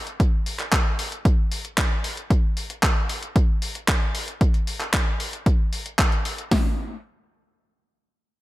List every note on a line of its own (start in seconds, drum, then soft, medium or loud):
0.07 closed hi-hat soft
0.20 kick loud
0.20 closed hi-hat medium
0.46 open hi-hat loud
0.59 clap soft
0.59 closed hi-hat medium
0.73 kick loud
0.73 clap loud
0.73 closed hi-hat medium
0.99 open hi-hat loud
1.12 closed hi-hat medium
1.25 kick loud
1.25 closed hi-hat medium
1.52 open hi-hat loud
1.65 closed hi-hat medium
1.78 kick loud
1.78 clap loud
1.78 closed hi-hat medium
2.04 open hi-hat loud
2.17 closed hi-hat medium
2.30 kick loud
2.30 closed hi-hat medium
2.57 open hi-hat loud
2.70 closed hi-hat medium
2.83 kick loud
2.83 clap loud
2.83 closed hi-hat medium
3.09 open hi-hat loud
3.23 closed hi-hat medium
3.36 kick loud
3.36 closed hi-hat medium
3.62 open hi-hat loud
3.75 closed hi-hat medium
3.88 kick loud
3.88 clap loud
3.88 closed hi-hat medium
4.15 open hi-hat loud
4.28 closed hi-hat medium
4.41 kick loud
4.41 closed hi-hat medium
4.54 closed hi-hat soft
4.67 open hi-hat loud
4.81 clap soft
4.81 closed hi-hat medium
4.94 kick loud
4.94 clap loud
4.94 closed hi-hat medium
5.20 open hi-hat loud
5.33 closed hi-hat medium
5.46 kick loud
5.46 closed hi-hat medium
5.73 open hi-hat loud
5.86 closed hi-hat medium
5.99 kick loud
5.99 clap loud
5.99 closed hi-hat medium
6.12 closed hi-hat soft
6.25 open hi-hat loud
6.38 closed hi-hat medium
6.51 kick loud
6.51 snare loud
6.51 open hi-hat medium